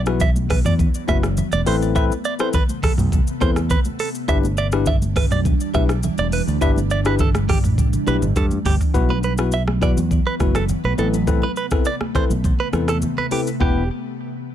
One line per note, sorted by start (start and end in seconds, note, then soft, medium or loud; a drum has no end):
0.00 0.61 B1 loud
0.00 1.64 E3 medium
0.00 1.64 F#3 medium
0.00 4.24 B3 medium
0.06 0.22 B3 medium
0.06 0.22 E4 medium
0.06 0.22 F#4 medium
0.06 0.23 B4 medium
0.06 cross-stick loud
0.06 shaker medium
0.20 0.30 E5 medium
0.20 kick loud
0.20 low conga medium
0.20 shaker medium
0.36 high conga medium
0.36 shaker medium
0.50 0.59 B4 medium
0.50 kick medium
0.50 cross-stick loud
0.50 open hi-hat medium
0.50 low conga medium
0.50 shaker medium
0.65 0.86 E2 loud
0.65 0.73 D5 medium
0.65 mid tom loud
0.65 high conga medium
0.65 shaker medium
0.79 kick medium
0.79 low conga medium
0.79 shaker medium
0.94 shaker medium
1.08 1.41 F#1 medium
1.08 1.25 B3 medium
1.08 1.25 E4 medium
1.08 1.25 F#4 medium
1.08 1.25 B4 medium
1.08 1.17 E5 medium
1.08 kick loud
1.08 cross-stick medium
1.08 high conga medium
1.08 shaker soft
1.23 cross-stick loud
1.23 shaker medium
1.37 low conga medium
1.37 shaker medium
1.52 1.63 E1 medium
1.52 1.60 D5 medium
1.52 high conga medium
1.52 shaker soft
1.66 2.09 A1 loud
1.66 4.26 C3 medium
1.66 4.26 A3 medium
1.66 1.93 C4 loud
1.66 1.93 E4 medium
1.66 1.93 A4 medium
1.66 1.93 B4 loud
1.66 1.75 C5 medium
1.66 open hi-hat medium
1.66 shaker medium
1.82 shaker medium
1.95 2.12 C4 medium
1.95 2.12 E4 medium
1.95 2.12 A4 medium
1.95 2.12 B4 loud
1.95 2.04 E5 medium
1.95 kick loud
1.95 shaker medium
2.10 high conga medium
2.10 shaker medium
2.24 2.34 D5 medium
2.24 shaker soft
2.39 2.55 C4 medium
2.39 2.55 E4 medium
2.39 2.55 A4 medium
2.39 2.55 B4 medium
2.39 2.48 C5 medium
2.39 cross-stick loud
2.39 shaker medium
2.53 2.63 B4 medium
2.53 kick medium
2.53 low conga medium
2.53 shaker medium
2.69 high conga medium
2.69 shaker medium
2.83 2.92 A4 medium
2.83 kick medium
2.83 cross-stick loud
2.83 open hi-hat medium
2.83 low conga medium
2.83 shaker medium
2.98 3.19 B1 loud
2.98 mid tom loud
2.98 high conga medium
2.98 shaker medium
3.12 kick medium
3.12 low conga medium
3.12 shaker medium
3.27 shaker medium
3.41 3.74 E2 loud
3.41 3.58 C4 medium
3.41 3.58 E4 medium
3.41 3.58 A4 medium
3.41 3.58 B4 medium
3.41 3.50 C5 medium
3.41 kick loud
3.41 cross-stick medium
3.41 high conga medium
3.41 shaker soft
3.56 cross-stick loud
3.56 shaker medium
3.70 3.79 B4 medium
3.70 kick medium
3.70 low conga medium
3.70 shaker medium
3.85 high conga medium
3.85 shaker medium
3.99 4.08 A4 medium
3.99 open hi-hat medium
3.99 shaker medium
4.15 shaker medium
4.28 5.27 G1 loud
4.28 8.91 E3 medium
4.28 8.91 G3 medium
4.28 4.45 D4 medium
4.28 8.91 D4 medium
4.28 4.45 E4 medium
4.28 4.45 G4 medium
4.28 4.45 B4 loud
4.28 4.37 E5 loud
4.28 kick loud
4.28 shaker medium
4.43 high conga medium
4.43 shaker medium
4.57 4.66 D5 medium
4.57 shaker medium
4.72 4.88 D4 medium
4.72 4.88 E4 medium
4.72 4.89 G4 medium
4.72 4.89 B4 medium
4.72 cross-stick loud
4.72 shaker medium
4.86 4.96 E5 loud
4.86 kick medium
4.86 low conga medium
4.86 shaker medium
5.02 high conga medium
5.02 shaker medium
5.16 5.25 B4 medium
5.16 kick medium
5.16 cross-stick medium
5.16 open hi-hat medium
5.16 low conga medium
5.16 shaker medium
5.31 5.52 B1 loud
5.31 5.39 D5 medium
5.31 mid tom loud
5.31 high conga medium
5.31 shaker medium
5.45 kick loud
5.45 low conga medium
5.45 shaker medium
5.60 shaker medium
5.74 6.07 B1 loud
5.74 5.91 D4 medium
5.74 5.91 E4 medium
5.74 5.91 G4 medium
5.74 5.91 B4 medium
5.74 5.83 E5 medium
5.74 kick loud
5.74 cross-stick medium
5.74 high conga medium
5.74 shaker soft
5.89 cross-stick loud
5.89 shaker medium
6.03 low conga medium
6.03 shaker medium
6.18 6.40 E1 loud
6.18 6.27 D5 medium
6.18 high conga medium
6.18 shaker medium
6.32 6.41 B4 medium
6.32 open hi-hat medium
6.32 shaker medium
6.47 6.58 D2 medium
6.47 shaker medium
6.61 7.64 G1 loud
6.61 6.78 D4 medium
6.61 6.78 E4 medium
6.61 6.78 G4 medium
6.61 6.78 B4 loud
6.61 6.70 E5 medium
6.61 kick loud
6.61 shaker medium
6.76 high conga medium
6.76 shaker medium
6.90 7.00 D5 medium
6.90 shaker soft
7.05 7.21 D4 medium
7.05 7.21 E4 medium
7.05 7.21 G4 medium
7.05 7.21 B4 medium
7.05 7.14 B4 medium
7.05 cross-stick loud
7.05 shaker medium
7.19 7.29 A4 medium
7.19 kick loud
7.19 low conga medium
7.19 shaker medium
7.35 cross-stick loud
7.35 high conga medium
7.35 shaker medium
7.49 7.58 G4 medium
7.49 kick medium
7.49 cross-stick medium
7.49 open hi-hat medium
7.49 low conga medium
7.49 shaker medium
7.64 7.95 A1 medium
7.64 mid tom loud
7.64 high conga medium
7.64 shaker medium
7.78 kick loud
7.78 high tom medium
7.78 low conga medium
7.78 shaker medium
7.93 high tom medium
7.93 shaker medium
8.07 8.18 B1 medium
8.07 8.24 D4 medium
8.07 8.24 E4 medium
8.07 8.24 G4 medium
8.07 8.24 B4 medium
8.07 8.16 B4 medium
8.07 high conga medium
8.07 shaker medium
8.22 8.32 G1 medium
8.22 mid tom medium
8.22 shaker medium
8.36 8.57 G2 loud
8.36 8.45 A4 medium
8.36 kick medium
8.36 mid tom medium
8.36 low conga medium
8.36 shaker medium
8.51 high conga medium
8.51 shaker medium
8.65 8.76 G1 loud
8.65 8.74 G4 medium
8.65 floor tom loud
8.65 open hi-hat medium
8.65 shaker medium
8.81 floor tom loud
8.81 shaker medium
8.94 9.93 B1 loud
8.94 10.96 E3 medium
8.94 10.96 F#3 medium
8.94 9.11 B3 medium
8.94 13.56 B3 medium
8.94 9.11 E4 medium
8.94 9.11 F#4 medium
8.94 9.11 B4 loud
8.94 kick loud
8.94 shaker medium
9.09 9.18 B4 medium
9.09 high conga medium
9.23 9.33 B4 medium
9.23 shaker medium
9.38 9.54 B3 medium
9.38 9.54 E4 medium
9.38 9.54 F#4 medium
9.38 9.54 B4 medium
9.38 cross-stick loud
9.38 shaker medium
9.52 9.62 E5 medium
9.52 shaker medium
9.68 cross-stick loud
9.68 high conga medium
9.81 9.98 B3 medium
9.81 9.98 E4 medium
9.81 9.99 F#4 medium
9.81 9.99 B4 medium
9.81 9.91 D5 medium
9.81 kick medium
9.81 cross-stick medium
9.81 low conga medium
9.81 shaker medium
9.97 10.18 E2 loud
9.97 high conga medium
9.97 shaker medium
10.11 kick medium
10.11 low conga medium
10.11 shaker medium
10.27 10.34 B4 medium
10.40 10.72 F#1 medium
10.40 10.57 B3 medium
10.40 10.57 E4 medium
10.40 10.57 F#4 medium
10.40 10.57 B4 medium
10.40 kick medium
10.40 cross-stick medium
10.40 high conga medium
10.40 shaker soft
10.55 10.63 A4 medium
10.55 cross-stick loud
10.55 shaker medium
10.69 low conga medium
10.69 shaker medium
10.84 10.94 B1 medium
10.84 10.93 B4 medium
10.84 high conga medium
10.98 11.41 A1 loud
10.98 13.58 C3 medium
10.98 13.58 A3 medium
10.98 11.15 C4 medium
10.98 11.15 E4 medium
10.98 11.15 A4 medium
10.98 11.07 A4 medium
10.98 11.15 B4 medium
10.98 high conga medium
10.98 shaker medium
11.14 shaker medium
11.27 11.44 C4 loud
11.27 11.44 E4 medium
11.27 11.44 A4 medium
11.27 11.44 B4 loud
11.27 kick loud
11.27 shaker medium
11.42 11.51 B4 medium
11.42 high conga medium
11.56 11.66 B4 medium
11.56 shaker soft
11.71 11.87 C4 medium
11.71 11.87 E4 medium
11.71 11.87 A4 medium
11.71 11.88 B4 medium
11.71 kick loud
11.71 cross-stick loud
11.71 shaker medium
11.85 11.95 D5 medium
11.85 shaker medium
12.01 cross-stick medium
12.01 high conga medium
12.15 12.31 C4 medium
12.15 12.32 E4 medium
12.15 12.32 A4 medium
12.15 12.32 B4 medium
12.15 12.24 C5 medium
12.15 kick medium
12.15 cross-stick medium
12.15 low conga medium
12.15 shaker medium
12.30 12.51 B1 medium
12.30 high conga medium
12.30 shaker medium
12.44 kick medium
12.44 low conga medium
12.44 shaker medium
12.60 12.68 B4 medium
12.73 13.05 E2 medium
12.73 12.90 C4 medium
12.73 12.90 E4 medium
12.73 12.90 A4 medium
12.73 12.90 B4 medium
12.73 cross-stick medium
12.73 high conga medium
12.73 shaker soft
12.88 12.97 A4 medium
12.88 cross-stick loud
12.88 shaker medium
13.02 low conga medium
13.02 shaker medium
13.18 13.26 B4 medium
13.18 high conga medium
13.31 13.48 C4 medium
13.31 13.48 E4 medium
13.31 13.40 G4 medium
13.31 13.48 A4 medium
13.31 13.48 B4 medium
13.31 open hi-hat medium
13.31 high conga medium
13.31 shaker medium
13.47 shaker medium
13.60 13.88 E1 loud
13.60 13.82 B3 medium
13.60 13.82 E4 medium
13.60 13.82 G4 medium
13.60 13.88 G4 medium
13.60 13.83 B4 loud
13.60 kick loud
13.60 high conga medium